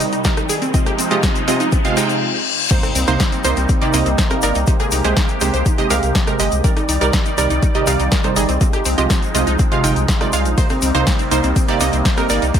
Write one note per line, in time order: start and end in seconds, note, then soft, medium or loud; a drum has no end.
0.00 0.72 C2 medium
0.00 0.22 C3 loud
0.00 0.72 D#3 medium
0.00 0.22 G3 medium
0.00 0.72 G3 medium
0.00 0.22 D#4 medium
0.00 0.07 D#4 medium
0.00 0.22 D#5 loud
0.00 open hi-hat loud
0.00 riser medium
0.00 shaker medium
0.12 0.19 D#4 medium
0.12 closed hi-hat soft
0.12 shaker soft
0.24 0.40 C3 medium
0.24 0.40 G3 medium
0.24 0.40 D#4 medium
0.24 0.32 A#4 medium
0.24 0.40 D#5 medium
0.24 kick loud
0.24 snare loud
0.24 closed hi-hat medium
0.24 shaker soft
0.37 0.44 D#4 medium
0.37 cross-stick medium
0.37 closed hi-hat soft
0.37 shaker soft
0.49 0.56 G#4 medium
0.49 open hi-hat loud
0.49 shaker medium
0.62 0.68 C4 medium
0.62 closed hi-hat soft
0.62 shaker soft
0.74 2.20 C3 medium
0.74 0.84 C3 medium
0.74 2.20 F3 medium
0.74 2.20 G#3 medium
0.74 0.84 G#3 medium
0.74 0.81 C4 medium
0.74 2.20 D#4 medium
0.74 0.84 F4 medium
0.74 0.84 D#5 medium
0.74 kick loud
0.74 closed hi-hat medium
0.74 shaker medium
0.86 0.93 G4 medium
0.86 cross-stick medium
0.86 closed hi-hat soft
0.86 shaker soft
0.98 1.05 C4 medium
0.98 open hi-hat loud
0.98 shaker loud
1.11 1.26 C3 medium
1.11 1.26 G#3 medium
1.11 1.26 F4 medium
1.11 1.18 G4 medium
1.11 1.26 D#5 loud
1.11 closed hi-hat soft
1.11 shaker soft
1.23 1.30 C4 medium
1.23 kick loud
1.23 snare loud
1.23 closed hi-hat medium
1.23 shaker medium
1.35 closed hi-hat soft
1.35 shaker soft
1.48 1.58 C3 medium
1.48 1.58 G#3 medium
1.48 1.55 C4 medium
1.48 1.58 F4 medium
1.48 1.58 D#5 loud
1.48 open hi-hat loud
1.48 shaker medium
1.60 1.67 D#4 medium
1.60 closed hi-hat soft
1.60 shaker soft
1.72 1.79 C4 medium
1.72 kick loud
1.72 closed hi-hat medium
1.72 reverse cymbal medium
1.72 shaker soft
1.85 1.95 C3 loud
1.85 1.95 G#3 medium
1.85 1.91 C4 medium
1.85 1.95 F4 medium
1.85 1.94 F5 loud
1.85 closed hi-hat soft
1.85 shaker soft
1.97 2.22 C3 medium
1.97 2.22 G#3 medium
1.97 2.22 D#4 loud
1.97 2.22 F4 medium
1.97 2.22 G5 loud
1.97 open hi-hat loud
1.97 shaker loud
2.09 closed hi-hat soft
2.09 shaker soft
2.71 6.60 C3 medium
2.71 2.80 C3 medium
2.71 4.65 G3 medium
2.71 6.60 A#3 medium
2.71 2.81 A#3 medium
2.71 4.65 D#4 medium
2.71 2.80 D#4 medium
2.71 2.81 C5 medium
2.71 2.78 C5 loud
2.71 kick loud
2.71 closed hi-hat medium
2.71 crash loud
2.71 impact medium
2.71 shaker medium
2.83 2.90 C4 medium
2.83 cross-stick medium
2.83 closed hi-hat soft
2.83 shaker soft
2.95 3.05 C2 medium
2.95 3.02 C4 medium
2.95 open hi-hat loud
2.95 shaker loud
3.07 3.17 C2 medium
3.07 3.23 C3 medium
3.07 3.23 A#3 medium
3.07 3.23 D#4 medium
3.07 3.14 C5 medium
3.07 3.23 C5 loud
3.07 closed hi-hat medium
3.07 shaker soft
3.20 3.27 C4 medium
3.20 kick loud
3.20 snare loud
3.20 closed hi-hat medium
3.20 shaker medium
3.32 3.39 C4 medium
3.32 closed hi-hat soft
3.32 shaker soft
3.44 3.54 C2 loud
3.44 3.54 C3 medium
3.44 3.54 A#3 medium
3.44 3.54 D#4 medium
3.44 3.54 C5 loud
3.44 3.51 C5 medium
3.44 open hi-hat loud
3.44 shaker loud
3.56 3.66 C2 medium
3.56 3.64 C4 medium
3.56 closed hi-hat medium
3.56 shaker soft
3.69 3.76 C4 medium
3.69 kick loud
3.69 closed hi-hat medium
3.69 shaker medium
3.81 3.91 C3 loud
3.81 3.91 A#3 loud
3.81 3.91 D#4 medium
3.81 3.88 G4 medium
3.81 3.91 D5 loud
3.81 closed hi-hat soft
3.81 shaker soft
3.93 4.03 C2 loud
3.93 4.28 C3 medium
3.93 4.28 A#3 medium
3.93 4.00 C4 medium
3.93 4.28 D#4 medium
3.93 4.28 D#5 loud
3.93 open hi-hat loud
3.93 shaker loud
4.06 4.15 C2 medium
4.06 4.13 C4 medium
4.06 closed hi-hat medium
4.06 shaker soft
4.18 4.25 C5 medium
4.18 kick loud
4.18 snare loud
4.18 closed hi-hat medium
4.18 shaker medium
4.30 4.40 C3 medium
4.30 4.40 A#3 medium
4.30 4.37 C4 medium
4.30 4.40 D#4 medium
4.30 4.40 A#4 loud
4.30 cross-stick medium
4.30 closed hi-hat soft
4.30 shaker soft
4.42 4.52 G1 medium
4.42 4.58 A#3 medium
4.42 4.58 D#4 medium
4.42 4.50 A#4 loud
4.42 4.58 D5 loud
4.42 open hi-hat loud
4.42 shaker medium
4.55 4.64 C2 medium
4.55 4.62 D#4 medium
4.55 closed hi-hat medium
4.55 shaker soft
4.67 4.77 C3 medium
4.67 6.62 G#3 medium
4.67 4.77 G#3 medium
4.67 4.74 D#4 medium
4.67 6.62 G4 medium
4.67 4.77 G4 medium
4.67 4.77 C5 medium
4.67 kick loud
4.67 closed hi-hat medium
4.67 shaker medium
4.80 4.87 G#4 medium
4.80 cross-stick medium
4.80 closed hi-hat soft
4.80 shaker soft
4.91 5.01 C2 loud
4.91 4.99 D#4 medium
4.91 open hi-hat loud
4.91 shaker loud
5.04 5.14 C2 medium
5.04 5.20 C3 medium
5.04 5.20 G#3 medium
5.04 5.20 G4 medium
5.04 5.11 G#4 medium
5.04 5.20 C5 loud
5.04 closed hi-hat medium
5.04 shaker soft
5.17 5.23 D#4 medium
5.17 kick loud
5.17 snare loud
5.17 closed hi-hat medium
5.17 shaker medium
5.28 closed hi-hat soft
5.28 shaker soft
5.41 5.51 C2 loud
5.41 5.51 C3 medium
5.41 5.51 G#3 medium
5.41 5.48 D#4 medium
5.41 5.51 G4 medium
5.41 5.51 C5 loud
5.41 open hi-hat loud
5.41 shaker medium
5.54 5.63 C2 medium
5.54 5.60 C5 medium
5.54 closed hi-hat medium
5.54 shaker soft
5.66 5.73 D#4 medium
5.66 kick loud
5.66 closed hi-hat medium
5.66 shaker medium
5.78 5.88 C3 loud
5.78 5.88 G#3 medium
5.78 5.85 D#4 medium
5.78 5.88 G4 medium
5.78 5.88 D#5 loud
5.78 closed hi-hat soft
5.78 shaker soft
5.90 6.00 C2 medium
5.90 6.24 C3 medium
5.90 6.24 G#3 medium
5.90 6.24 G4 medium
5.90 6.54 A#4 loud
5.90 6.24 F5 loud
5.90 open hi-hat loud
5.90 shaker loud
6.03 6.12 C2 medium
6.03 closed hi-hat medium
6.03 shaker soft
6.15 kick loud
6.15 snare loud
6.15 closed hi-hat medium
6.15 shaker medium
6.27 6.37 C3 medium
6.27 6.37 G#3 medium
6.27 6.37 G4 medium
6.27 6.37 A#4 loud
6.27 cross-stick medium
6.27 closed hi-hat soft
6.27 shaker soft
6.40 6.49 G1 medium
6.40 6.55 G#3 medium
6.40 6.55 G4 medium
6.40 6.55 D#5 loud
6.40 open hi-hat loud
6.40 shaker loud
6.52 6.61 C2 medium
6.52 closed hi-hat medium
6.52 shaker soft
6.64 6.74 C3 medium
6.64 8.59 D#3 medium
6.64 6.74 G3 medium
6.64 8.59 G3 medium
6.64 6.74 D#4 medium
6.64 6.71 A#4 loud
6.64 6.74 D5 medium
6.64 8.59 D5 medium
6.64 kick loud
6.64 closed hi-hat medium
6.64 shaker medium
6.77 6.83 D#4 medium
6.77 cross-stick medium
6.77 closed hi-hat soft
6.77 shaker soft
6.89 6.98 C2 medium
6.89 6.96 D#4 medium
6.89 open hi-hat loud
6.89 shaker medium
7.01 7.10 C2 medium
7.01 7.17 C3 medium
7.01 7.17 G3 medium
7.01 7.17 D#4 medium
7.01 7.08 A#4 loud
7.01 7.17 D5 loud
7.01 closed hi-hat medium
7.01 shaker soft
7.13 7.20 D#4 medium
7.13 kick loud
7.13 snare loud
7.13 closed hi-hat medium
7.13 shaker medium
7.25 7.32 D#4 medium
7.25 closed hi-hat soft
7.25 shaker soft
7.38 7.47 C2 loud
7.38 7.48 C3 loud
7.38 7.48 G3 medium
7.38 7.48 D#4 medium
7.38 7.45 A#4 loud
7.38 7.48 D5 loud
7.38 open hi-hat loud
7.38 shaker medium
7.50 7.60 C2 medium
7.50 7.57 D#4 medium
7.50 closed hi-hat soft
7.50 shaker soft
7.63 7.69 D#4 medium
7.63 kick loud
7.63 closed hi-hat medium
7.63 shaker medium
7.75 7.85 C3 loud
7.75 7.85 G3 medium
7.75 7.85 D#4 medium
7.75 7.82 G4 medium
7.75 7.85 D#5 loud
7.75 closed hi-hat soft
7.75 shaker soft
7.87 7.97 C2 loud
7.87 8.21 C3 medium
7.87 8.21 G3 medium
7.87 8.21 D#4 medium
7.87 7.94 D#4 medium
7.87 8.21 F5 loud
7.87 open hi-hat loud
7.87 shaker loud
8.00 8.09 C2 medium
8.00 8.06 D#4 medium
8.00 closed hi-hat medium
8.00 shaker soft
8.12 8.19 A#4 medium
8.12 kick loud
8.12 snare loud
8.12 closed hi-hat medium
8.12 shaker medium
8.24 8.34 C3 medium
8.24 8.34 G3 medium
8.24 8.34 D#4 medium
8.24 8.31 D#4 medium
8.24 8.34 C5 loud
8.24 cross-stick medium
8.24 closed hi-hat soft
8.24 shaker soft
8.36 8.46 G1 medium
8.36 8.52 G3 medium
8.36 8.52 D#4 medium
8.36 8.43 G#4 medium
8.36 8.52 D#5 loud
8.36 open hi-hat loud
8.36 shaker loud
8.49 8.58 C2 medium
8.49 8.55 C4 medium
8.49 closed hi-hat medium
8.49 shaker soft
8.61 8.71 C3 medium
8.61 10.56 F3 medium
8.61 8.71 G#3 medium
8.61 10.56 G#3 medium
8.61 8.68 C4 medium
8.61 12.50 D#4 medium
8.61 8.71 F4 medium
8.61 8.71 D#5 medium
8.61 kick loud
8.61 closed hi-hat medium
8.61 shaker medium
8.73 8.80 G4 medium
8.73 cross-stick medium
8.73 closed hi-hat soft
8.73 shaker soft
8.85 8.95 C2 loud
8.85 8.92 C4 medium
8.85 open hi-hat loud
8.85 shaker loud
8.98 9.07 C2 medium
8.98 9.13 C3 medium
8.98 9.13 G#3 medium
8.98 9.13 F4 medium
8.98 9.05 G4 medium
8.98 9.13 D#5 loud
8.98 closed hi-hat soft
8.98 shaker soft
9.10 9.17 C4 medium
9.10 kick loud
9.10 snare loud
9.10 closed hi-hat medium
9.10 shaker medium
9.22 closed hi-hat soft
9.22 shaker soft
9.35 9.44 C2 medium
9.35 9.44 C3 medium
9.35 9.44 G#3 medium
9.35 9.41 C4 medium
9.35 9.44 F4 medium
9.35 9.44 D#5 loud
9.35 open hi-hat loud
9.35 shaker medium
9.47 9.56 C2 medium
9.47 9.54 D#4 medium
9.47 closed hi-hat soft
9.47 shaker soft
9.59 9.66 C4 medium
9.59 kick loud
9.59 closed hi-hat medium
9.59 shaker medium
9.72 9.81 C3 loud
9.72 9.81 G#3 medium
9.72 9.78 C4 medium
9.72 9.81 F4 medium
9.72 9.81 F5 loud
9.72 closed hi-hat soft
9.72 shaker soft
9.84 9.93 G1 loud
9.84 10.18 C3 medium
9.84 10.18 G#3 medium
9.84 10.48 D#4 loud
9.84 10.18 F4 medium
9.84 10.18 G5 loud
9.84 open hi-hat loud
9.84 shaker loud
9.96 10.05 C2 medium
9.96 closed hi-hat medium
9.96 shaker soft
10.08 kick loud
10.08 snare loud
10.08 closed hi-hat medium
10.08 shaker medium
10.21 10.30 C3 medium
10.21 10.30 G#3 medium
10.21 10.30 F4 medium
10.21 10.30 D5 loud
10.21 cross-stick medium
10.21 closed hi-hat soft
10.21 shaker soft
10.33 10.47 C2 medium
10.33 10.49 G#3 medium
10.33 10.49 F4 medium
10.33 10.49 F5 loud
10.33 open hi-hat loud
10.33 shaker loud
10.45 10.55 A#1 medium
10.45 closed hi-hat medium
10.45 shaker soft
10.58 10.67 C3 medium
10.58 12.52 C3 medium
10.58 12.52 G3 medium
10.58 10.67 A#3 medium
10.58 12.60 A#3 medium
10.58 10.67 D#4 medium
10.58 10.67 C5 medium
10.58 10.64 C5 loud
10.58 kick loud
10.58 closed hi-hat medium
10.58 ride medium
10.58 shaker medium
10.69 10.77 C4 medium
10.69 cross-stick medium
10.69 closed hi-hat soft
10.69 shaker soft
10.82 10.92 C2 loud
10.82 10.89 C4 medium
10.82 open hi-hat loud
10.82 shaker loud
10.95 11.04 C2 medium
10.95 11.10 C3 loud
10.95 11.10 A#3 medium
10.95 11.10 D#4 medium
10.95 11.10 C5 loud
10.95 11.01 C5 medium
10.95 closed hi-hat soft
10.95 shaker soft
11.07 11.14 C4 medium
11.07 kick loud
11.07 snare loud
11.07 closed hi-hat medium
11.07 ride medium
11.07 shaker medium
11.19 11.26 C4 medium
11.19 closed hi-hat soft
11.19 shaker soft
11.31 11.41 C2 medium
11.31 11.41 C3 medium
11.31 11.41 A#3 medium
11.31 11.41 D#4 medium
11.31 11.41 C5 loud
11.31 11.38 C5 medium
11.31 open hi-hat loud
11.31 shaker medium
11.43 11.53 C2 medium
11.43 11.50 C4 medium
11.43 closed hi-hat medium
11.43 shaker soft
11.56 11.63 C4 medium
11.56 kick loud
11.56 closed hi-hat medium
11.56 ride medium
11.56 shaker medium
11.68 11.78 C3 loud
11.68 11.78 A#3 medium
11.68 11.78 D#4 medium
11.68 11.75 G4 medium
11.68 11.78 D5 loud
11.68 closed hi-hat soft
11.68 shaker soft
11.80 11.90 C2 loud
11.80 12.15 C3 loud
11.80 12.15 A#3 medium
11.80 11.87 C4 medium
11.80 12.15 D#4 medium
11.80 12.15 D#5 loud
11.80 open hi-hat loud
11.80 shaker loud
11.93 12.02 C2 medium
11.93 12.00 C4 medium
11.93 closed hi-hat medium
11.93 shaker soft
12.05 12.12 C5 medium
12.05 kick loud
12.05 snare loud
12.05 closed hi-hat medium
12.05 ride medium
12.05 shaker medium
12.17 12.27 C3 medium
12.17 12.27 A#3 medium
12.17 12.24 C4 medium
12.17 12.27 D#4 medium
12.17 12.27 A#4 loud
12.17 cross-stick medium
12.17 closed hi-hat soft
12.17 shaker soft
12.30 12.39 G1 medium
12.30 12.45 A#3 medium
12.30 12.45 D#4 medium
12.30 12.37 A#4 loud
12.30 12.45 D5 loud
12.30 open hi-hat loud
12.30 shaker medium
12.42 12.51 C2 medium
12.42 12.49 D#4 medium
12.42 closed hi-hat medium
12.42 shaker soft
12.54 12.60 C3 medium
12.54 12.60 G#3 medium
12.54 12.60 D#4 medium
12.54 12.60 G4 medium
12.54 12.60 C5 medium
12.54 kick loud
12.54 closed hi-hat medium
12.54 ride medium
12.54 shaker medium